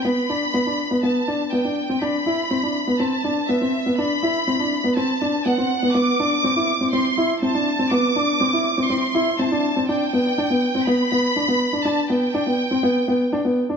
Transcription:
<<
  \new Staff \with { instrumentName = "Violin section" } { \time 4/4 \key g \major \tempo 4 = 122 b''2 a''4 g''4 | b''2 a''4 e''4 | b''2 a''4 fis''4 | d'''2 c'''4 a''4 |
d'''2 c'''4 a''4 | g''2 b''2 | a''8 g''2. r8 | }
  \new Staff \with { instrumentName = "Upright piano" } { \time 4/4 \key g \major b8 d'8 b16 d'8 b16 b8 d'8 b16 d'8 c'16 | d'8 e'8 c'16 d'8 b16 c'8 d'8 b16 c'8 b16 | d'8 e'8 c'16 d'8 b16 c'8 d'8 b16 c'8 b16 | b8 d'8 c'16 e'8 c'16 c'8 e'8 c'16 d'8 c'16 |
b8 d'8 c'16 e'8 c'16 c'8 e'8 c'16 d'8 c'16 | d'8 b8 d'16 b8 c'16 b8 b8 d'16 b8 d'16 | d'8 b8 d'16 b8 c'16 b8 b8 d'16 b8 d'16 | }
>>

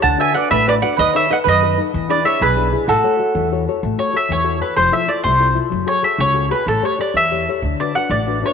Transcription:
<<
  \new Staff \with { instrumentName = "Mandolin" } { \time 6/8 \key a \major \tempo 4. = 127 a''8 gis''8 fis''8 e''8 d''8 fis''8 | dis''8 e''8 fis''8 dis''4 r8 | r8 d''8 e''8 b'4. | a'2 r4 |
r8 cis''8 e''8 cis''4 b'8 | c''8 e''8 d''8 c''4 r8 | r8 cis''8 e''8 cis''4 b'8 | a'8 cis''8 d''8 e''4 r8 |
r8 d''8 fis''8 d''4 cis''8 | }
  \new Staff \with { instrumentName = "Mandolin" } { \time 6/8 \key a \major fis''8 e''8 d''8 b'8 b'8 d''8 | b'8 cis''8 dis''8 b'4 r8 | r8 b'8 cis''8 gis'4. | fis'2 r4 |
r2. | r2. | r2. | r2. |
r2. | }
  \new Staff \with { instrumentName = "Nylon-string guitar" } { \time 6/8 \key a \major d8 <d' fis' b'>8 <d' fis' b'>8 a8 <d' fis' b'>8 <d' fis' b'>8 | dis8 <dis' a' b'>8 <dis' a' b'>8 dis8 <dis' a' b'>8 <dis' a' b'>8 | e8 <d' e' gis'>8 <d' e' gis'>8 b,8 <d' e' gis'>8 <d' e' gis'>8 | a8 <fis' a' cis''>8 <fis' a' cis''>8 e8 <fis' a' cis''>8 <fis' a' cis''>8 |
a8 <fis' a' cis''>8 <fis' a' cis''>8 e8 <fis' a' cis''>8 <fis' a' cis''>8 | f8 <e' f' a'>8 <e' f' a'>8 c8 <e' f' a'>8 <e' f' a'>8 | fis8 <fis' gis' a'>8 <fis' gis' a'>8 cis8 <fis' gis' a'>8 <fis' gis' a'>8 | a8 <g' a' cis''>8 <g' a' cis''>8 e8 <g' a' cis''>8 <g' a' cis''>8 |
d8 <d' fis' b'>8 <d' fis' b'>8 a8 <d' fis' b'>8 <d' fis' b'>8 | }
  \new Staff \with { instrumentName = "Upright bass" } { \clef bass \time 6/8 \key a \major d,8 r4 a,,4. | dis,8 r4 fis,4. | e,8 r4 b,,4. | a,,8 r4 e,4. |
a,,8 r4 e,4. | f,,8 r4 c,4. | fis,,8 r4 cis,4. | a,,8 r4 e,4. |
d,8 r4 a,,4. | }
>>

